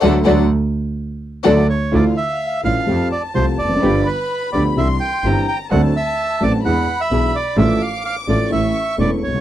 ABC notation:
X:1
M:4/4
L:1/16
Q:1/4=127
K:D
V:1 name="Violin section"
[Adf]2 [Adf]2 z8 [Adf]2 z2 | [K:Dm] f8 a8 | =b8 c'4 _b4 | a8 =b8 |
d'8 ^c'6 z2 |]
V:2 name="Bandoneon"
z12 d2 c2 | [K:Dm] d2 e4 f4 d2 c2 d2- | d2 =B4 d2 e2 g4 g2 | ^f2 e4 d2 f3 e3 d2 |
e2 f2 f2 d2 e4 d2 ^c2 |]
V:3 name="String section"
[A,DF]2 [A,DF]2 z8 [A,DF]2 z2 | [K:Dm] [DEF]2 z4 [DEF]2 [A,FG]2 z2 [A,FG]2 z2 | [=B,FG]2 z4 [B,FG]2 [CDE]2 z2 [CDE]2 z2 | [CD^F]2 z4 [CDF]2 [^G,DE]2 z2 [G,DE]2 z2 |
[A,DF]2 z4 [A,DF]2 [A,^CE]2 z2 [A,CE]2 z2 |]
V:4 name="Grand piano" clef=bass
[D,F,A,]2 [D,F,A,]2 z8 [D,F,A,]2 z2 | [K:Dm] [D,,D,E,A,DF]2 z4 [A,,,A,,E,A,DF]2 [F,,F,A,CG]2 z2 [C,,C,F,A,CG]2 z/2 E,,/2 F,,/2 ^F,,/2 | [G,,,G,,F,=B,DG]2 z4 [D,,D,F,B,DG]2 [C,,C,E,CDG]2 z2 [G,,,G,,E,CDG]2 z2 | [D,,D,^F,CDA]2 z4 [A,,,A,,F,CDA]2 [E,,E,=B,D^G]2 z2 [=B,,,=B,,E,B,DG]2 z2 |
[A,,,A,,F,A,DA]2 z4 [A,,,A,,F,A,DA]2 [A,,,A,,E,A,^CA]2 z2 [E,,,E,,E,A,CA]2 z/2 =B,,,/2 =C,,/2 z/2 |]
V:5 name="Double bass" clef=bass
D,,2 D,,2 z8 D,,2 z2 | [K:Dm] D,,2 z4 A,,,2 F,,2 z2 C,,2 F,,,2 | G,,,2 z4 D,,2 C,,2 z2 G,,,2 z2 | D,,2 z4 A,,,2 E,,2 z2 =B,,,2 z2 |
A,,,2 z4 A,,,2 A,,,2 z2 E,,,2 C,,2 |]